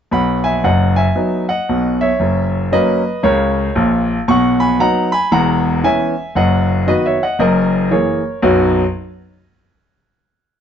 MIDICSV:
0, 0, Header, 1, 2, 480
1, 0, Start_track
1, 0, Key_signature, 5, "major"
1, 0, Tempo, 519931
1, 113, Time_signature, 4, 2, 24, 8
1, 9788, End_track
2, 0, Start_track
2, 0, Title_t, "Grand piano"
2, 0, Program_c, 0, 0
2, 105, Note_on_c, 0, 47, 59
2, 106, Note_on_c, 0, 35, 64
2, 116, Note_on_c, 0, 83, 65
2, 128, Note_on_c, 0, 78, 52
2, 313, Control_c, 0, 64, 127
2, 394, Note_off_c, 0, 78, 0
2, 405, Note_on_c, 0, 80, 76
2, 408, Note_off_c, 0, 83, 0
2, 420, Note_on_c, 0, 76, 58
2, 491, Note_off_c, 0, 47, 0
2, 492, Note_off_c, 0, 35, 0
2, 585, Note_off_c, 0, 76, 0
2, 587, Note_on_c, 0, 42, 66
2, 590, Note_on_c, 0, 30, 65
2, 591, Note_off_c, 0, 80, 0
2, 595, Note_on_c, 0, 78, 71
2, 603, Control_c, 0, 64, 0
2, 606, Note_on_c, 0, 75, 55
2, 872, Note_off_c, 0, 75, 0
2, 887, Note_off_c, 0, 78, 0
2, 889, Note_on_c, 0, 80, 75
2, 903, Note_on_c, 0, 76, 56
2, 972, Note_off_c, 0, 42, 0
2, 973, Note_off_c, 0, 30, 0
2, 1066, Note_on_c, 0, 63, 41
2, 1068, Note_on_c, 0, 59, 41
2, 1071, Note_on_c, 0, 54, 44
2, 1330, Note_off_c, 0, 63, 0
2, 1332, Note_off_c, 0, 59, 0
2, 1334, Note_off_c, 0, 54, 0
2, 1340, Note_off_c, 0, 76, 0
2, 1365, Note_off_c, 0, 80, 0
2, 1374, Note_on_c, 0, 78, 73
2, 1386, Note_on_c, 0, 75, 57
2, 1560, Note_on_c, 0, 35, 60
2, 1562, Note_on_c, 0, 47, 62
2, 1820, Note_off_c, 0, 75, 0
2, 1848, Note_off_c, 0, 78, 0
2, 1855, Note_on_c, 0, 76, 71
2, 1867, Note_on_c, 0, 73, 53
2, 1939, Note_off_c, 0, 35, 0
2, 1939, Note_off_c, 0, 47, 0
2, 2025, Note_on_c, 0, 42, 60
2, 2033, Note_on_c, 0, 30, 58
2, 2211, Control_c, 0, 64, 127
2, 2433, Note_off_c, 0, 42, 0
2, 2438, Note_off_c, 0, 30, 0
2, 2482, Note_off_c, 0, 73, 0
2, 2513, Note_off_c, 0, 76, 0
2, 2514, Note_on_c, 0, 54, 48
2, 2515, Note_on_c, 0, 58, 52
2, 2515, Note_on_c, 0, 61, 56
2, 2519, Control_c, 0, 64, 0
2, 2519, Note_on_c, 0, 75, 87
2, 2526, Note_on_c, 0, 71, 64
2, 2776, Note_off_c, 0, 54, 0
2, 2776, Note_off_c, 0, 61, 0
2, 2777, Note_off_c, 0, 58, 0
2, 2963, Note_off_c, 0, 71, 0
2, 2983, Note_on_c, 0, 37, 70
2, 2983, Note_on_c, 0, 49, 67
2, 2988, Note_on_c, 0, 73, 78
2, 2992, Note_off_c, 0, 75, 0
2, 2993, Note_on_c, 0, 70, 60
2, 3392, Note_off_c, 0, 37, 0
2, 3392, Note_off_c, 0, 49, 0
2, 3466, Note_on_c, 0, 34, 75
2, 3466, Note_on_c, 0, 46, 73
2, 3727, Note_off_c, 0, 70, 0
2, 3761, Note_off_c, 0, 73, 0
2, 3850, Note_off_c, 0, 34, 0
2, 3850, Note_off_c, 0, 46, 0
2, 3950, Note_on_c, 0, 47, 78
2, 3954, Note_on_c, 0, 35, 62
2, 3955, Note_on_c, 0, 85, 89
2, 3974, Note_on_c, 0, 78, 72
2, 4121, Control_c, 0, 64, 127
2, 4235, Note_off_c, 0, 78, 0
2, 4245, Note_off_c, 0, 85, 0
2, 4246, Note_on_c, 0, 83, 78
2, 4252, Note_on_c, 0, 80, 57
2, 4356, Note_off_c, 0, 47, 0
2, 4359, Note_off_c, 0, 35, 0
2, 4419, Note_off_c, 0, 80, 0
2, 4428, Note_on_c, 0, 54, 51
2, 4429, Note_off_c, 0, 83, 0
2, 4432, Note_on_c, 0, 59, 48
2, 4434, Note_on_c, 0, 82, 95
2, 4436, Control_c, 0, 64, 0
2, 4436, Note_on_c, 0, 63, 59
2, 4442, Note_on_c, 0, 78, 67
2, 4691, Note_off_c, 0, 54, 0
2, 4695, Note_off_c, 0, 59, 0
2, 4698, Note_off_c, 0, 63, 0
2, 4708, Note_off_c, 0, 78, 0
2, 4725, Note_off_c, 0, 82, 0
2, 4728, Note_on_c, 0, 83, 86
2, 4741, Note_on_c, 0, 80, 62
2, 4905, Note_off_c, 0, 80, 0
2, 4908, Note_on_c, 0, 28, 73
2, 4908, Note_on_c, 0, 40, 82
2, 4910, Note_off_c, 0, 83, 0
2, 4912, Note_on_c, 0, 82, 92
2, 4923, Note_on_c, 0, 78, 71
2, 5105, Control_c, 0, 64, 127
2, 5316, Note_off_c, 0, 28, 0
2, 5316, Note_off_c, 0, 40, 0
2, 5362, Note_off_c, 0, 78, 0
2, 5388, Note_on_c, 0, 52, 44
2, 5390, Note_off_c, 0, 82, 0
2, 5393, Note_on_c, 0, 59, 45
2, 5394, Control_c, 0, 64, 0
2, 5395, Note_on_c, 0, 80, 91
2, 5398, Note_on_c, 0, 61, 50
2, 5406, Note_on_c, 0, 76, 59
2, 5652, Note_off_c, 0, 52, 0
2, 5656, Note_off_c, 0, 59, 0
2, 5660, Note_off_c, 0, 61, 0
2, 5844, Note_off_c, 0, 76, 0
2, 5867, Note_on_c, 0, 30, 67
2, 5870, Note_on_c, 0, 42, 74
2, 5872, Note_off_c, 0, 80, 0
2, 5876, Note_on_c, 0, 78, 74
2, 5882, Note_on_c, 0, 75, 61
2, 6035, Control_c, 0, 64, 127
2, 6276, Note_off_c, 0, 30, 0
2, 6278, Note_off_c, 0, 42, 0
2, 6323, Note_off_c, 0, 75, 0
2, 6343, Note_on_c, 0, 51, 49
2, 6348, Note_on_c, 0, 59, 47
2, 6350, Note_on_c, 0, 75, 79
2, 6352, Note_on_c, 0, 66, 52
2, 6353, Note_off_c, 0, 78, 0
2, 6360, Control_c, 0, 64, 0
2, 6362, Note_on_c, 0, 71, 65
2, 6505, Note_off_c, 0, 71, 0
2, 6510, Note_off_c, 0, 75, 0
2, 6516, Note_on_c, 0, 76, 66
2, 6527, Note_on_c, 0, 73, 51
2, 6610, Note_off_c, 0, 51, 0
2, 6613, Note_off_c, 0, 59, 0
2, 6615, Note_off_c, 0, 66, 0
2, 6668, Note_off_c, 0, 73, 0
2, 6673, Note_off_c, 0, 76, 0
2, 6675, Note_on_c, 0, 78, 67
2, 6685, Note_on_c, 0, 75, 50
2, 6818, Note_off_c, 0, 75, 0
2, 6823, Note_on_c, 0, 30, 73
2, 6825, Note_on_c, 0, 42, 78
2, 6831, Note_on_c, 0, 75, 83
2, 6832, Note_off_c, 0, 78, 0
2, 6842, Note_on_c, 0, 70, 69
2, 6992, Control_c, 0, 64, 127
2, 7235, Note_off_c, 0, 30, 0
2, 7236, Note_off_c, 0, 42, 0
2, 7283, Note_off_c, 0, 70, 0
2, 7302, Note_on_c, 0, 52, 44
2, 7305, Note_on_c, 0, 58, 40
2, 7306, Note_on_c, 0, 73, 62
2, 7309, Note_on_c, 0, 68, 47
2, 7312, Note_off_c, 0, 75, 0
2, 7323, Control_c, 0, 64, 0
2, 7323, Note_on_c, 0, 70, 40
2, 7569, Note_off_c, 0, 52, 0
2, 7571, Note_off_c, 0, 58, 0
2, 7574, Note_off_c, 0, 68, 0
2, 7764, Note_off_c, 0, 70, 0
2, 7776, Note_on_c, 0, 42, 70
2, 7777, Note_on_c, 0, 35, 87
2, 7780, Note_on_c, 0, 54, 60
2, 7783, Note_on_c, 0, 59, 72
2, 7786, Note_on_c, 0, 66, 73
2, 7787, Note_on_c, 0, 63, 67
2, 7789, Note_off_c, 0, 73, 0
2, 7790, Note_on_c, 0, 75, 52
2, 7940, Control_c, 0, 64, 127
2, 8092, Note_off_c, 0, 42, 0
2, 8093, Note_off_c, 0, 35, 0
2, 8094, Note_off_c, 0, 54, 0
2, 8096, Note_off_c, 0, 59, 0
2, 8097, Note_off_c, 0, 66, 0
2, 8098, Note_off_c, 0, 63, 0
2, 8099, Note_off_c, 0, 75, 0
2, 8145, Control_c, 0, 64, 0
2, 9788, End_track
0, 0, End_of_file